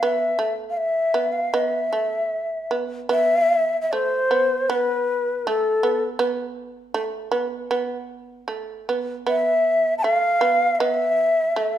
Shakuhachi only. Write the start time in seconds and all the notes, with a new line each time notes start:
0.05 E5
0.70 F5
0.77 E5
1.32 F5
1.53 E5
3.11 E5
3.81 E5
3.92 C5
4.69 B4
5.47 A4
9.28 E5
9.98 A5
10.03 F5
10.75 E5 F5